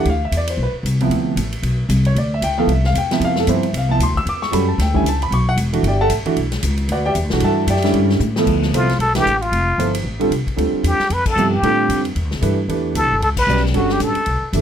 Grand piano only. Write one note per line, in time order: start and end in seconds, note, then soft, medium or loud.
0.10 0.23 F5 medium
0.25 0.34 E5 medium
0.37 0.50 D5 medium
0.50 0.60 C5 medium
0.63 0.71 B4 medium
1.01 1.36 C3 medium
1.01 1.36 F3 medium
1.01 1.36 B3 medium
1.01 1.36 E4 medium
2.06 2.17 C#5 medium
2.18 2.32 D5 medium
2.34 2.44 E5 loud
2.44 2.58 G5 loud
2.58 2.68 F3 medium
2.58 2.68 B3 medium
2.58 2.69 E4 medium
2.58 2.69 A4 medium
2.58 2.69 F5 medium
2.72 2.85 E5 medium
2.86 2.96 F5 loud
2.98 3.11 G5 medium
3.11 3.46 C3 medium
3.11 3.46 F3 medium
3.11 3.46 B3 medium
3.11 3.46 E4 medium
3.11 3.23 E5 medium
3.25 3.38 F5 loud
3.40 3.49 A4 medium
3.48 3.62 C3 medium
3.48 3.62 F3 medium
3.48 3.62 B3 medium
3.48 3.63 E4 medium
3.48 3.63 C5 medium
3.64 3.74 E5 medium
3.77 3.91 F5 medium
3.89 3.99 C3 medium
3.89 3.99 F3 medium
3.89 3.99 B3 medium
3.89 3.99 E4 medium
3.89 4.01 A5 loud
4.03 4.17 C6 medium
4.17 4.27 E6 loud
4.29 4.43 D6 loud
4.42 4.53 C#6 loud
4.51 4.66 G3 medium
4.51 4.66 C#4 medium
4.51 4.66 F#4 medium
4.51 4.67 A4 medium
4.51 4.68 B5 medium
4.68 4.79 A5 medium
4.82 4.95 G5 medium
4.94 5.04 D3 medium
4.94 5.04 G3 medium
4.94 5.04 C#4 medium
4.94 5.04 E4 medium
4.94 5.06 G#5 medium
5.09 5.22 A5 medium
5.23 5.32 B5 loud
5.34 5.48 C#6 loud
5.49 5.55 F#5 loud
5.73 5.83 E3 medium
5.73 5.83 A3 medium
5.73 5.83 D4 medium
5.73 5.83 F#4 medium
5.87 6.01 G4 medium
5.87 6.01 D5 medium
5.87 6.00 E5 medium
5.87 6.01 G5 medium
6.01 6.11 A4 medium
6.01 6.11 E5 medium
6.01 6.11 F#5 medium
6.01 6.11 A5 loud
6.26 6.36 E3 medium
6.26 6.36 A3 medium
6.26 6.36 D4 medium
6.26 6.36 F#4 medium
6.92 7.06 F#4 medium
6.92 7.06 B4 medium
6.92 7.05 D5 medium
6.92 7.06 F#5 medium
7.06 7.12 G4 medium
7.06 7.12 D5 medium
7.06 7.12 E5 medium
7.06 7.12 G5 loud
7.32 7.66 E3 medium
7.32 7.67 A3 medium
7.32 7.67 D4 medium
7.32 7.67 F#4 medium
7.44 7.68 A4 medium
7.44 7.68 E5 medium
7.44 7.68 F#5 medium
7.44 7.68 A5 medium
7.70 7.94 G4 medium
7.70 7.94 D5 medium
7.70 7.94 E5 medium
7.70 7.94 G5 medium
7.84 8.19 D3 medium
7.84 8.19 G3 medium
7.84 8.19 C#4 medium
7.84 8.19 E4 medium
8.37 8.72 F3 medium
8.37 8.72 B3 medium
8.37 8.72 E4 medium
8.37 8.72 A4 medium
8.73 8.87 F3 medium
8.73 8.88 B3 medium
8.73 8.88 E4 medium
8.73 8.88 A4 medium
8.73 8.88 C5 medium
9.15 9.25 E3 medium
9.15 9.25 A3 medium
9.15 9.25 D4 medium
9.15 9.26 G4 medium
9.15 9.26 B4 medium
9.78 9.93 F3 medium
9.78 9.92 B3 medium
9.78 9.93 E4 soft
9.78 9.93 A4 medium
9.78 9.93 C5 medium
10.19 10.30 D3 medium
10.19 10.30 G3 medium
10.19 10.30 C4 medium
10.19 10.30 F4 medium
10.19 10.31 A4 medium
10.57 10.96 D3 medium
10.57 10.96 G3 soft
10.57 10.96 C4 soft
10.57 10.96 F4 soft
10.57 10.96 A4 medium
11.38 11.51 C3 medium
11.38 11.51 F3 medium
11.38 11.51 B3 medium
11.38 11.51 E4 medium
11.38 11.51 G4 medium
11.63 12.02 D3 medium
11.63 12.02 G3 medium
11.63 12.03 C4 medium
11.63 12.02 F4 medium
11.63 12.03 A4 medium
12.41 12.56 E3 medium
12.41 12.56 A3 medium
12.41 12.56 D4 medium
12.41 12.56 G4 medium
12.41 12.56 B4 medium
12.69 13.07 E3 medium
12.69 13.07 A3 medium
12.69 13.08 D4 soft
12.69 13.08 G4 medium
12.69 13.08 B4 medium
13.48 13.62 G3 medium
13.48 13.62 C#4 medium
13.48 13.62 F#4 medium
13.48 13.62 B4 medium
13.48 13.62 D5 medium
13.74 14.13 D3 medium
13.74 14.13 G3 medium
13.74 14.13 C#4 medium
13.74 14.13 F#4 medium
13.74 14.13 A4 medium
14.54 14.61 E3 medium
14.54 14.61 A3 medium
14.54 14.61 D4 medium
14.54 14.61 G4 soft
14.54 14.61 A4 medium